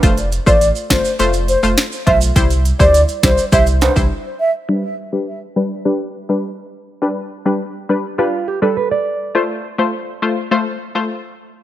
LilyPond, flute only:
\new Staff \with { instrumentName = "Flute" } { \time 4/4 \key g \mixolydian \tempo 4 = 103 r8. d''8 r16 c''8 r8 c''16 r8. e''16 r16 | r8. d''8 r16 c''8 e''16 r16 c''16 r8. e''16 r16 | r1 | r1 |
r1 | }